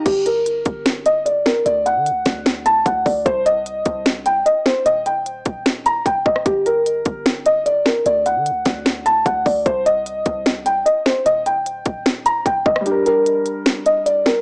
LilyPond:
<<
  \new Staff \with { instrumentName = "Felt piano" } { \time 4/4 \key g \minor \tempo 4 = 150 g'8 bes'4. r8 ees''8 d''8 bes'8 | d''8 fis''4. r8 a''8 fis''8 d''8 | c''8 ees''4. r8 g''8 ees''8 c''8 | ees''8 g''4. r8 bes''8 g''8 ees''8 |
g'8 bes'4. r8 ees''8 d''8 bes'8 | d''8 fis''4. r8 a''8 fis''8 d''8 | c''8 ees''4. r8 g''8 ees''8 c''8 | ees''8 g''4. r8 bes''8 g''8 ees''8 |
g'8 bes'4. r8 ees''8 d''8 bes'8 | }
  \new Staff \with { instrumentName = "Grand piano" } { \time 4/4 \key g \minor r1 | r1 | r1 | r1 |
r1 | r1 | r1 | r1 |
<g d' bes'>1 | }
  \new Staff \with { instrumentName = "808-style bass" } { \clef bass \time 4/4 \key g \minor g,,4. g,,2~ g,,8 | d,8. d16. d,16. d,4. d,8 d,8 | c,4. c,4. r4 | ees,,4. ees,,4. ees,,8 ees,,8 |
g,,4. g,,2~ g,,8 | d,8. d16. d,16. d,4. d,8 d,8 | c,4. c,4. r4 | ees,,4. ees,,4. ees,,8 g,,8 |
r1 | }
  \new DrumStaff \with { instrumentName = "Drums" } \drummode { \time 4/4 <cymc hh bd>8 hh8 hh8 <hh bd>8 <hh sn>8 hh8 hh8 sn8 | hh8 hh8 hh8 <hh bd sn>8 <hh sn>8 hh8 <hh bd>8 <hho bd>8 | <hh bd>8 hh8 hh8 <hh bd>8 <hh sn>8 hh8 hh8 sn8 | hh8 hh8 hh8 <hh bd>8 <hh sn>8 hh8 <hh bd>8 bd16 ss16 |
<hh bd>8 hh8 hh8 <hh bd>8 <hh sn>8 hh8 hh8 sn8 | hh8 hh8 hh8 <hh bd sn>8 <hh sn>8 hh8 <hh bd>8 <hho bd>8 | <hh bd>8 hh8 hh8 <hh bd>8 <hh sn>8 hh8 hh8 sn8 | hh8 hh8 hh8 <hh bd>8 <hh sn>8 hh8 <hh bd>8 bd16 ss16 |
hh8 hh8 hh8 hh8 <hh sn>8 hh8 hh8 sn8 | }
>>